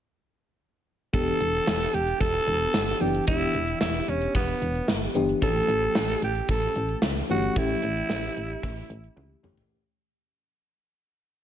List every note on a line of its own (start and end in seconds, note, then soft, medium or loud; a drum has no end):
1.13 1.33 E1 loud
1.13 2.05 E3 medium
1.13 2.05 B3 medium
1.13 2.05 D4 medium
1.13 2.06 G4 medium
1.13 1.96 A4 loud
1.13 kick loud
1.13 closed hi-hat medium
1.27 closed hi-hat soft
1.41 1.60 E1 medium
1.41 closed hi-hat medium
1.55 closed hi-hat soft
1.67 1.86 E1 medium
1.67 snare loud
1.81 closed hi-hat soft
1.94 2.13 E1 medium
1.94 2.20 G4 medium
1.94 closed hi-hat medium
2.07 closed hi-hat soft
2.20 2.40 E1 loud
2.20 3.03 A4 loud
2.20 kick medium
2.20 closed hi-hat medium
2.34 closed hi-hat soft
2.47 2.67 E1 loud
2.47 closed hi-hat medium
2.60 closed hi-hat soft
2.74 2.94 G1 medium
2.74 snare loud
2.88 closed hi-hat soft
3.00 3.20 F#1 medium
3.00 3.23 E3 medium
3.00 3.24 B3 medium
3.00 3.24 D4 medium
3.00 3.27 G4 medium
3.00 3.24 G4 medium
3.00 closed hi-hat medium
3.14 closed hi-hat soft
3.27 3.47 E1 loud
3.27 4.19 E3 medium
3.27 4.20 B3 medium
3.27 4.20 D4 medium
3.27 3.77 E4 loud
3.27 4.20 G4 medium
3.27 kick loud
3.27 closed hi-hat medium
3.41 closed hi-hat soft
3.54 3.74 E1 loud
3.54 closed hi-hat medium
3.68 closed hi-hat medium
3.81 4.01 E1 loud
3.81 4.11 E4 medium
3.81 snare loud
3.94 closed hi-hat soft
4.08 4.27 E1 medium
4.08 4.35 C#4 medium
4.08 closed hi-hat medium
4.21 closed hi-hat soft
4.35 4.54 E1 loud
4.35 5.12 B3 medium
4.35 kick medium
4.35 closed hi-hat medium
4.48 closed hi-hat soft
4.62 4.81 E1 medium
4.62 closed hi-hat medium
4.75 closed hi-hat soft
4.88 5.08 G1 medium
4.88 snare loud
5.02 closed hi-hat soft
5.14 5.35 G1 medium
5.14 5.38 E3 medium
5.14 5.38 B3 medium
5.14 5.38 D4 medium
5.14 5.38 G4 medium
5.14 closed hi-hat medium
5.29 closed hi-hat soft
5.41 5.61 A1 loud
5.41 6.33 E3 medium
5.41 6.34 A3 medium
5.41 6.34 C#4 medium
5.41 6.34 G4 medium
5.41 6.19 A4 loud
5.41 kick loud
5.41 closed hi-hat medium
5.56 closed hi-hat soft
5.68 5.88 A1 loud
5.68 closed hi-hat medium
5.82 closed hi-hat soft
5.95 6.15 A1 medium
5.95 snare loud
6.09 closed hi-hat medium
6.22 6.42 A1 medium
6.22 6.48 G4 medium
6.22 closed hi-hat medium
6.35 closed hi-hat soft
6.49 6.68 A1 medium
6.49 7.00 A4 medium
6.49 kick medium
6.49 closed hi-hat medium
6.62 closed hi-hat soft
6.75 6.95 A1 loud
6.75 closed hi-hat medium
6.89 closed hi-hat soft
7.02 7.22 C#2 medium
7.02 snare loud
7.16 closed hi-hat soft
7.29 7.49 G1 medium
7.29 7.52 E3 medium
7.29 7.52 A3 medium
7.29 7.53 C#4 medium
7.29 7.59 F#4 medium
7.29 7.53 G4 medium
7.29 closed hi-hat medium
7.43 closed hi-hat soft
7.56 7.75 A1 loud
7.56 8.48 E3 medium
7.56 8.49 A3 medium
7.56 8.49 C#4 medium
7.56 9.44 E4 loud
7.56 8.49 G4 medium
7.56 kick loud
7.56 closed hi-hat medium
7.70 closed hi-hat soft
7.83 8.02 A1 loud
7.83 closed hi-hat medium
7.97 closed hi-hat soft
8.10 8.29 A1 medium
8.10 snare loud
8.23 closed hi-hat soft
8.37 8.56 A1 medium
8.37 closed hi-hat medium
8.50 closed hi-hat soft
8.63 8.83 A1 loud
8.63 kick medium
8.63 closed hi-hat medium
8.77 closed hi-hat soft
8.90 9.09 A1 loud
8.90 closed hi-hat medium
9.04 closed hi-hat soft
9.17 9.36 C#2 medium
9.17 high tom medium
9.43 9.63 G1 medium
9.43 9.66 E3 medium
9.43 9.67 A3 medium
9.43 9.67 C#4 medium
9.43 9.67 G4 medium
9.43 mid tom medium
9.57 floor tom medium